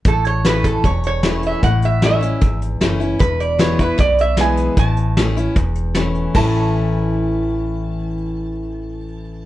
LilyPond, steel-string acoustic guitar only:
\new Staff \with { instrumentName = "Steel-string acoustic guitar" } { \time 4/4 \key a \major \tempo 4 = 152 << { r4 <e a cis' e'>4 r4 <e a cis' e'>4 | r4 <e a cis' e'>8 <cis' e'>8 r4 <e a cis' e'>8 <cis' e'>8 | r4 <e gis b e'>8 <b e'>8 r4 <e gis b e'>4 | r4 <e a cis' e'>8 <cis' e'>8 r4 <e a cis' e'>4 |
<a, e a cis' e'>1~ | <a, e a cis' e'>1 | } \\ { a,2 e,2 | a,2 e,2 | e,2 b,2 | a,2 e,2 |
r1 | r1 | } >> }